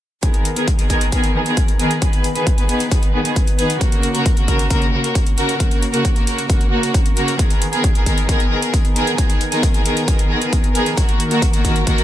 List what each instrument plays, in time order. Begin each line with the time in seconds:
0.23 string section D#3 B3 G#4 A#4, kick, closed hi-hat
0.34 closed hi-hat
0.45 closed hi-hat
0.56 string section D#3 B3 G#4 A#4, closed hi-hat
0.68 kick, closed hi-hat
0.79 string section D#3 B3 G#4 A#4, closed hi-hat
0.90 string section D#3 B3 G#4 A#4, kick, closed hi-hat
1.01 closed hi-hat
1.12 string section D#3 B3 G#4 A#4, kick, closed hi-hat
1.24 closed hi-hat
1.35 string section D#3 B3 G#4 A#4
1.46 string section D#3 B3 G#4 A#4, closed hi-hat
1.57 kick, closed hi-hat
1.68 closed hi-hat
1.79 string section D#3 B3 G#4 A#4, closed hi-hat
1.91 closed hi-hat
2.02 string section D#3 B3 G#4 B4, kick, closed hi-hat
2.13 closed hi-hat
2.24 closed hi-hat
2.35 string section D#3 B3 G#4 B4, closed hi-hat
2.47 kick, closed hi-hat
2.58 string section D#3 B3 G#4 B4, closed hi-hat
2.69 string section D#3 B3 G#4 B4, closed hi-hat
2.80 closed hi-hat
2.91 string section D#3 B3 G#4 B4, kick, closed hi-hat
3.03 closed hi-hat
3.14 string section D#3 B3 G#4 B4
3.25 string section D#3 B3 G#4 B4, closed hi-hat
3.36 kick, closed hi-hat
3.47 closed hi-hat
3.59 string section D#3 B3 G#4 B4, closed hi-hat
3.70 closed hi-hat
3.81 string section C#3 A#3 F#4 A#4, kick, closed hi-hat
3.92 closed hi-hat
4.03 closed hi-hat
4.14 string section C#3 A#3 F#4 A#4, closed hi-hat
4.26 kick, closed hi-hat
4.37 string section C#3 A#3 F#4 A#4, closed hi-hat
4.48 string section C#3 A#3 F#4 A#4, kick, closed hi-hat
4.59 closed hi-hat
4.70 string section C#3 A#3 F#4 A#4, kick, closed hi-hat
4.82 closed hi-hat
4.93 string section C#3 A#3 F#4 A#4
5.04 string section C#3 A#3 F#4 A#4, closed hi-hat
5.15 kick, closed hi-hat
5.26 closed hi-hat
5.38 string section C#3 A#3 F#4 A#4, closed hi-hat
5.49 closed hi-hat
5.60 string section C#3 A#3 F#4 A#4, kick, closed hi-hat
5.71 closed hi-hat
5.83 closed hi-hat
5.94 string section C#3 A#3 F#4 A#4, closed hi-hat
6.05 kick, closed hi-hat
6.16 string section C#3 A#3 F#4 A#4, closed hi-hat
6.27 string section C#3 A#3 F#4 A#4, closed hi-hat
6.38 closed hi-hat
6.49 string section C#3 A#3 F#4 A#4, kick, closed hi-hat
6.61 closed hi-hat
6.72 string section C#3 A#3 F#4 A#4
6.83 string section C#3 A#3 F#4 A#4, closed hi-hat
6.94 kick, closed hi-hat
7.06 closed hi-hat
7.17 string section C#3 A#3 F#4 A#4, closed hi-hat
7.28 closed hi-hat
7.39 string section D#3 B3 G#4 A#4, kick, closed hi-hat
7.50 closed hi-hat
7.62 closed hi-hat
7.73 string section D#3 B3 G#4 A#4, closed hi-hat
7.84 kick, closed hi-hat
7.95 string section D#3 B3 G#4 A#4, closed hi-hat
8.06 string section D#3 B3 G#4 A#4, kick, closed hi-hat
8.18 closed hi-hat
8.29 string section D#3 B3 G#4 A#4, kick, closed hi-hat
8.40 closed hi-hat
8.51 string section D#3 B3 G#4 A#4
8.62 string section D#3 B3 G#4 A#4, closed hi-hat
8.74 kick, closed hi-hat
8.85 closed hi-hat
8.96 string section D#3 B3 G#4 A#4, closed hi-hat
9.07 closed hi-hat
9.18 string section D#3 B3 G#4 A#4, kick, closed hi-hat
9.30 closed hi-hat
9.41 closed hi-hat
9.52 string section D#3 B3 G#4 A#4, closed hi-hat
9.63 kick, closed hi-hat
9.74 string section D#3 B3 G#4 A#4, closed hi-hat
9.85 string section D#3 B3 G#4 A#4, closed hi-hat
9.97 closed hi-hat
10.08 string section D#3 B3 G#4 A#4, kick, closed hi-hat
10.19 closed hi-hat
10.30 string section D#3 B3 G#4 A#4
10.42 string section D#3 B3 G#4 A#4, closed hi-hat
10.53 kick, closed hi-hat
10.64 closed hi-hat
10.75 string section D#3 B3 G#4 A#4, closed hi-hat
10.86 closed hi-hat
10.97 string section D#3 A#3 F#4 A#4, kick, closed hi-hat
11.09 closed hi-hat
11.20 closed hi-hat
11.31 string section D#3 A#3 F#4 A#4, closed hi-hat
11.42 kick, closed hi-hat
11.53 string section D#3 A#3 F#4 A#4, closed hi-hat
11.65 string section D#3 A#3 F#4 A#4, kick, closed hi-hat
11.76 closed hi-hat
11.87 string section D#3 A#3 F#4 A#4, kick, closed hi-hat
11.98 closed hi-hat